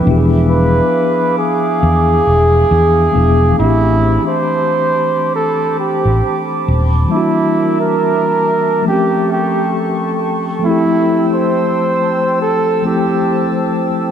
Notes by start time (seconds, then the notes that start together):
Already playing: E5
0.00 F3 B3
0.05 E1 D4 E4 G#4 F5 D6
0.11 G4
0.17 G#4
0.50 B4
1.39 G#4
1.83 E2
2.27 E1
2.71 E2
3.12 E1 F3 B3 D4
3.16 E4 G#4
3.53 E3 A3
3.58 A1 C4 D4 E4 C5 A5 B5 D6
3.64 G4
4.28 C5
5.36 A4
5.80 G4
6.05 A1
6.68 D#1
7.06 E3 G3
7.11 A#3 D4 E4 A#4 E5
7.17 F#4
7.81 A#4
8.82 F3 A3
8.87 C4 C#4 G4 A4 G5 C#6
8.93 G4
9.32 G4
10.59 F3 A3
10.64 C4 E4 C5 E6
10.70 G4
11.35 C5
12.41 A4 A5
12.82 F3 A3 C4 E4 G4
12.88 A4